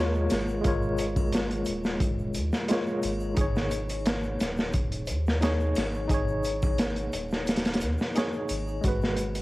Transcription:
0.00 0.28 D#2 loud
0.00 0.60 G#3 medium
0.00 0.61 F4 medium
0.00 0.61 A#4 medium
0.00 0.62 C#5 loud
0.14 shaker soft
0.30 0.62 G#1 loud
0.30 snare medium
0.30 closed hi-hat medium
0.30 triangle medium
0.30 shaker loud
0.48 shaker soft
0.61 2.64 G#3 medium
0.61 2.65 F4 medium
0.61 kick loud
0.61 closed hi-hat medium
0.61 shaker medium
0.65 1.64 G#1 loud
0.65 2.66 A#4 medium
0.65 2.67 C#5 medium
0.82 shaker soft
0.98 closed hi-hat medium
0.98 shaker medium
1.16 kick medium
1.16 triangle medium
1.16 shaker soft
1.32 snare loud
1.32 closed hi-hat medium
1.32 shaker medium
1.51 closed hi-hat soft
1.51 shaker soft
1.65 2.37 D#1 medium
1.65 closed hi-hat medium
1.65 shaker medium
1.84 snare soft
1.84 shaker soft
2.00 kick loud
2.00 closed hi-hat medium
2.00 shaker soft
2.19 shaker soft
2.34 2.51 D#2 medium
2.34 closed hi-hat medium
2.34 shaker loud
2.52 snare soft
2.52 shaker soft
2.68 3.33 G#3 medium
2.68 3.34 F4 medium
2.68 3.34 A#4 medium
2.68 3.35 C#5 loud
2.68 snare loud
2.68 closed hi-hat medium
2.68 shaker medium
2.86 shaker soft
3.02 3.34 G#1 loud
3.02 closed hi-hat medium
3.02 triangle medium
3.02 shaker loud
3.20 shaker soft
3.35 4.37 G#1 loud
3.35 5.37 D#4 medium
3.35 5.38 G#4 medium
3.35 kick loud
3.35 closed hi-hat medium
3.35 shaker medium
3.41 5.40 C#5 medium
3.56 snare soft
3.56 shaker soft
3.71 closed hi-hat medium
3.71 shaker loud
3.89 closed hi-hat soft
3.89 triangle medium
3.89 shaker soft
4.05 snare loud
4.05 closed hi-hat medium
4.05 shaker medium
4.23 shaker soft
4.40 5.11 D#1 medium
4.40 snare soft
4.40 closed hi-hat medium
4.40 shaker loud
4.57 snare soft
4.57 shaker soft
4.73 kick loud
4.73 closed hi-hat medium
4.73 shaker medium
4.92 closed hi-hat soft
4.92 shaker soft
5.07 5.74 D#2 loud
5.07 closed hi-hat medium
5.07 shaker medium
5.26 snare soft
5.26 shaker soft
5.41 6.06 D#4 medium
5.41 6.07 G#4 medium
5.41 6.07 C#5 loud
5.41 snare loud
5.41 closed hi-hat medium
5.41 shaker soft
5.60 shaker soft
5.75 6.07 G#1 loud
5.75 snare medium
5.75 closed hi-hat medium
5.75 triangle medium
5.75 shaker medium
5.94 shaker soft
6.08 7.09 G#1 loud
6.08 8.10 D#4 medium
6.08 8.11 G#4 medium
6.08 kick loud
6.08 closed hi-hat medium
6.08 shaker medium
6.14 8.13 C#5 loud
6.28 shaker soft
6.43 closed hi-hat medium
6.43 shaker medium
6.62 kick loud
6.62 triangle medium
6.62 shaker soft
6.78 snare loud
6.78 closed hi-hat medium
6.78 shaker medium
6.96 closed hi-hat soft
6.96 shaker soft
7.13 7.83 D#1 medium
7.13 closed hi-hat medium
7.13 shaker medium
7.31 snare soft
7.31 shaker soft
7.47 snare medium
7.47 closed hi-hat medium
7.47 shaker medium
7.56 snare medium
7.56 closed hi-hat medium
7.64 snare loud
7.64 closed hi-hat medium
7.64 shaker soft
7.74 snare medium
7.74 closed hi-hat medium
7.80 7.97 D#2 loud
7.80 closed hi-hat medium
7.80 shaker loud
7.98 snare soft
7.98 shaker soft
8.15 8.79 D#4 medium
8.15 8.80 G#4 medium
8.15 8.81 C#5 loud
8.15 snare loud
8.15 closed hi-hat medium
8.15 shaker medium
8.32 shaker soft
8.49 8.80 G#1 loud
8.49 closed hi-hat medium
8.49 triangle medium
8.49 shaker medium
8.68 shaker soft
8.81 9.42 G#1 loud
8.81 9.42 G#3 medium
8.81 9.42 F#4 medium
8.81 kick loud
8.81 closed hi-hat medium
8.81 shaker medium
8.88 9.42 B4 medium
9.02 snare soft
9.02 shaker soft
9.17 closed hi-hat medium
9.17 shaker loud
9.35 closed hi-hat soft
9.35 triangle medium
9.35 shaker soft

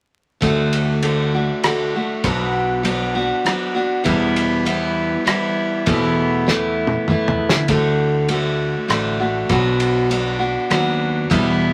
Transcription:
0.40 1.49 D2 medium
0.40 1.01 D3 medium
0.40 1.02 A3 medium
0.40 1.04 D4 medium
0.40 1.05 F#4 medium
0.40 kick medium
0.40 ride soft
0.73 ride soft
1.03 1.33 D3 medium
1.03 1.33 A3 medium
1.03 1.33 D4 medium
1.03 1.33 F#4 medium
1.03 ride medium
1.34 1.64 A3 soft
1.34 1.64 D4 soft
1.34 1.64 F#4 soft
1.64 1.94 D3 medium
1.64 1.94 A3 medium
1.64 1.94 D4 medium
1.64 1.93 F#4 medium
1.64 cross-stick medium
1.64 ride medium
1.95 2.25 A3 soft
1.95 2.23 D4 soft
1.95 2.24 F#4 soft
2.24 3.31 B1 medium
2.24 2.85 B2 medium
2.24 2.82 F#3 medium
2.24 2.84 B3 medium
2.24 2.83 D4 medium
2.24 2.84 F#4 medium
2.24 kick medium
2.24 ride medium
2.83 3.14 F#3 medium
2.83 3.15 B3 medium
2.83 3.14 D4 medium
2.83 3.14 F#4 medium
2.83 ride medium
3.15 3.44 B3 soft
3.15 3.45 D4 soft
3.15 3.45 F#4 soft
3.44 3.75 F#3 medium
3.44 3.76 B3 medium
3.44 3.75 D4 medium
3.44 3.73 F#4 medium
3.44 cross-stick medium
3.44 ride medium
3.75 4.04 B3 soft
3.75 4.05 D4 soft
3.75 4.04 F#4 medium
4.04 4.65 E2 medium
4.04 5.13 E2 loud
4.04 4.65 B2 medium
4.04 4.65 E3 medium
4.04 4.65 G3 medium
4.04 4.66 B3 medium
4.04 4.67 E4 medium
4.04 kick loud
4.04 ride medium
4.36 ride soft
4.65 5.24 E3 medium
4.65 5.25 G3 medium
4.65 5.25 B3 medium
4.65 5.25 E4 medium
4.65 ride medium
5.25 5.86 E3 medium
5.25 5.87 G3 medium
5.25 5.86 B3 medium
5.25 5.86 E4 medium
5.25 cross-stick medium
5.25 ride medium
5.86 6.47 E2 medium
5.86 6.93 E2 loud
5.86 6.48 B2 medium
5.86 6.45 E3 medium
5.86 6.47 A3 medium
5.86 6.47 B3 medium
5.86 6.48 E4 medium
5.86 kick medium
5.86 ride medium
6.47 7.07 E3 medium
6.47 7.08 A3 medium
6.47 7.09 B3 medium
6.47 7.09 E4 medium
6.47 snare medium
6.87 mid tom medium
7.08 7.68 E3 medium
7.08 7.68 A3 medium
7.08 7.69 B3 medium
7.08 7.69 E4 medium
7.08 mid tom medium
7.28 floor tom medium
7.38 7.52 E2 medium
7.49 7.67 D2 medium
7.49 snare medium
7.68 8.75 D2 loud
7.68 8.27 D3 medium
7.68 8.28 A3 medium
7.68 8.29 D4 medium
7.68 8.30 F#4 medium
7.68 kick loud
7.68 ride medium
8.28 8.87 D3 medium
8.28 8.87 A3 medium
8.28 8.88 D4 medium
8.28 8.89 F#4 medium
8.28 ride medium
8.88 9.42 A1 medium
8.88 9.19 D3 medium
8.88 9.19 A3 medium
8.88 9.20 D4 medium
8.88 9.18 F#4 medium
8.88 cross-stick medium
8.88 ride soft
9.20 9.51 A3 soft
9.20 9.49 D4 soft
9.20 9.50 F#4 soft
9.49 10.56 B1 loud
9.49 10.10 B2 medium
9.49 10.09 F#3 medium
9.49 10.10 B3 medium
9.49 10.10 D4 medium
9.49 10.11 F#4 medium
9.49 kick loud
9.49 ride medium
9.80 ride soft
10.10 10.40 F#3 medium
10.10 10.40 B3 medium
10.10 10.39 D4 medium
10.10 10.38 F#4 medium
10.10 ride medium
10.39 10.69 B3 soft
10.39 10.70 D4 soft
10.39 10.70 F#4 soft
10.70 11.23 D#2 medium
10.70 11.30 F#3 medium
10.70 11.30 B3 medium
10.70 11.31 D4 medium
10.70 11.31 F#4 medium
10.70 cross-stick medium
10.70 ride medium
11.30 11.73 E2 medium
11.30 11.73 E2 loud
11.30 11.73 B2 medium
11.30 11.73 E3 medium
11.30 11.73 G3 medium
11.30 11.73 B3 medium
11.30 11.73 E4 medium
11.30 kick loud
11.30 ride medium

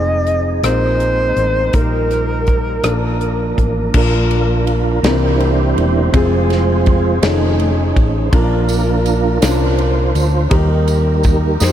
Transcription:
0.00 0.60 F1 medium
0.00 0.64 F3 soft
0.00 0.29 G#3 medium
0.00 0.29 C4 medium
0.00 0.61 C4 soft
0.00 0.30 D#4 medium
0.00 0.62 D#4 soft
0.00 0.30 F4 medium
0.00 0.64 G#4 medium
0.00 0.30 C5 medium
0.00 0.60 D#5 medium
0.27 closed hi-hat soft
0.63 1.33 A#1 medium
0.63 1.73 G#3 medium
0.63 1.40 G#3 medium
0.63 1.70 A#3 medium
0.63 1.73 C4 soft
0.63 1.40 C4 soft
0.63 1.73 D#4 soft
0.63 1.40 D#4 medium
0.63 1.41 F4 soft
0.63 1.72 A#4 medium
0.63 1.41 A#4 medium
0.63 1.77 C5 medium
0.63 cross-stick medium
0.63 closed hi-hat medium
1.00 closed hi-hat soft
1.36 1.71 A1 medium
1.36 closed hi-hat soft
1.73 2.80 A#1 medium
1.73 2.80 A#2 soft
1.73 2.84 G3 medium
1.73 2.82 A#3 soft
1.73 2.50 D#4 medium
1.73 2.84 D#4 soft
1.73 1.81 F4 soft
1.73 2.83 A#4 medium
1.73 3.58 A#4 medium
1.73 2.51 A#4 medium
1.73 kick medium
1.73 closed hi-hat medium
1.81 2.53 G4 medium
2.11 cross-stick soft
2.11 closed hi-hat soft
2.47 kick medium
2.47 closed hi-hat soft
2.83 3.53 A#1 medium
2.83 3.93 F3 medium
2.83 3.93 A#3 medium
2.83 3.90 A#3 medium
2.83 3.60 D4 medium
2.83 3.93 D4 medium
2.83 3.61 F4 medium
2.83 2.92 A4 medium
2.83 3.94 A#4 medium
2.83 cross-stick medium
2.83 closed hi-hat medium
2.93 3.64 A#4 medium
3.21 closed hi-hat soft
3.58 3.91 A1 medium
3.58 kick medium
3.58 closed hi-hat soft
3.94 5.00 A#1 loud
3.94 5.01 A#2 medium
3.94 5.00 F3 soft
3.94 5.00 A#3 soft
3.94 4.70 D4 medium
3.94 5.01 D4 medium
3.94 5.00 F4 medium
3.94 4.71 F4 medium
3.94 5.08 A#4 medium
3.94 4.71 A#4 medium
3.94 kick loud
3.94 crash medium
4.31 ride soft
4.67 ride soft
5.03 5.73 C2 loud
5.03 6.10 C3 medium
5.03 6.09 E3 medium
5.03 5.80 G3 medium
5.03 6.10 A#3 medium
5.03 5.80 A#3 medium
5.03 5.81 C4 medium
5.03 6.10 D4 medium
5.03 6.10 E4 medium
5.03 5.81 E4 medium
5.03 6.10 G4 medium
5.03 5.81 A#4 medium
5.03 6.12 C5 loud
5.03 snare loud
5.03 ride medium
5.40 ride soft
5.76 6.10 E1 medium
5.76 ride soft
6.11 7.19 F1 loud
6.11 7.18 F3 medium
6.11 7.18 G#3 soft
6.11 7.19 C4 medium
6.11 6.89 C4 medium
6.11 7.19 F4 medium
6.11 6.90 F4 medium
6.11 7.19 G#4 medium
6.11 7.26 C5 loud
6.11 kick loud
6.11 ride medium
6.16 6.90 G#4 medium
6.50 snare soft
6.50 ride soft
6.86 kick medium
6.86 ride soft
7.22 7.92 F1 loud
7.22 7.71 D#3 medium
7.22 7.98 A3 medium
7.22 7.71 A3 medium
7.22 8.29 C#4 medium
7.22 7.98 D#4 medium
7.22 8.29 D#4 medium
7.22 7.99 F4 medium
7.22 7.99 G#4 medium
7.22 8.02 G#4 medium
7.22 7.99 C#5 medium
7.22 snare loud
7.22 ride medium
7.59 ride soft
7.96 8.30 A1 medium
7.96 kick medium
7.96 ride soft
8.26 8.33 C5 medium
8.32 9.38 A#1 loud
8.32 9.38 A#2 medium
8.32 9.38 F3 medium
8.32 9.38 A#3 soft
8.32 9.08 D4 medium
8.32 9.39 D4 medium
8.32 9.39 F4 medium
8.32 9.09 F4 medium
8.32 9.46 A#4 loud
8.32 9.09 A#4 medium
8.32 kick loud
8.32 ride medium
8.69 ride soft
8.69 tambourine medium
9.06 ride soft
9.06 tambourine soft
9.41 10.11 C2 medium
9.41 9.48 C#4 medium
9.41 10.18 F4 medium
9.41 10.48 F4 medium
9.41 10.19 A#4 medium
9.41 10.56 C5 loud
9.41 snare loud
9.41 ride medium
9.41 tambourine medium
9.48 10.20 D4 medium
9.78 ride soft
10.15 10.48 D2 medium
10.15 ride soft
10.15 tambourine soft
10.50 11.56 D#2 loud
10.50 11.56 D#3 medium
10.50 11.57 G3 medium
10.50 11.57 A#3 soft
10.50 11.26 D#4 medium
10.50 11.57 D#4 medium
10.50 11.27 G4 medium
10.50 11.72 G4 medium
10.50 11.27 A#4 medium
10.50 11.72 A#4 medium
10.50 kick loud
10.50 ride medium
10.88 ride soft
10.88 tambourine soft
11.23 kick medium
11.23 ride soft
11.23 tambourine soft
11.60 11.72 F2 medium
11.60 11.72 D#4 medium
11.60 11.72 G4 medium
11.60 11.72 C5 medium
11.60 snare medium
11.60 tambourine medium

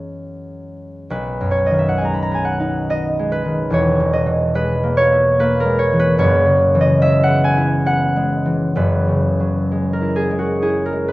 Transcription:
0.00 1.04 F#2 soft
0.00 1.07 E3 soft
0.00 1.92 G#3 soft
0.00 1.96 B3 soft
0.00 2.03 F#4 soft
0.00 2.03 G#4 medium
0.00 1.08 B4 medium
0.00 1.14 C#5 medium
0.00 1.14 E5 medium
0.00 0.61 G#5 medium
1.10 3.76 B1 medium
1.10 3.31 B4 medium
1.41 3.76 F#2 soft
1.51 1.78 C#5 medium
1.66 1.88 D#5 medium
1.71 3.44 D#3 soft
1.79 1.96 E5 medium
1.89 2.03 F#5 medium
1.98 3.18 G#3 soft
1.98 2.11 G#5 medium
2.05 2.20 A#5 medium
2.14 2.30 B5 medium
2.23 2.41 A#5 medium
2.31 2.88 B3 medium
2.31 2.53 G#5 medium
2.45 3.75 F#5 medium
2.60 6.22 D#4 soft
2.90 6.80 B3 medium
2.90 4.12 D#5 loud
3.19 4.54 G#3 soft
3.32 4.54 B4 medium
3.45 3.76 D#3 soft
3.70 6.22 E1 medium
3.70 6.22 E2 medium
3.70 4.43 C#5 medium
4.00 6.23 B2 medium
4.13 6.23 D#5 medium
4.26 5.92 E3 medium
4.55 5.64 G#3 medium
4.55 5.38 B4 medium
4.83 5.38 A#3 medium
4.97 5.66 C#5 loud
5.12 7.56 E4 medium
5.39 6.24 A#3 medium
5.39 5.98 B4 loud
5.60 5.94 A#4 medium
5.65 7.01 G#3 medium
5.79 6.13 C#5 loud
5.93 6.23 E3 medium
5.99 6.34 B4 loud
6.18 8.74 F#1 medium
6.18 8.75 F#2 medium
6.18 10.09 C#5 loud
6.46 8.83 C#3 medium
6.75 8.44 E3 medium
6.81 7.17 D#5 loud
7.02 8.15 G#3 medium
7.02 7.38 E5 loud
7.23 7.60 F#5 loud
7.28 7.85 B3 medium
7.44 11.12 G#5 loud
7.57 10.00 E4 medium
7.86 11.12 B3 medium
7.86 11.12 F#5 loud
8.16 9.70 G#3 medium
8.45 8.82 E3 soft
8.75 11.12 F#1 medium
8.75 11.12 F#2 medium
8.75 11.07 B4 medium
9.09 11.12 C#3 soft
9.40 11.12 F#3 soft
9.72 10.30 G#3 soft
9.93 10.32 A#4 medium
10.01 10.61 E4 soft
10.16 10.55 G#4 medium
10.31 10.91 G#3 soft
10.39 10.78 F#4 medium
10.62 11.12 E4 soft
10.62 11.02 G#4 medium
10.86 11.12 A#4 medium
10.93 11.12 G#3 soft
11.08 11.12 B4 medium

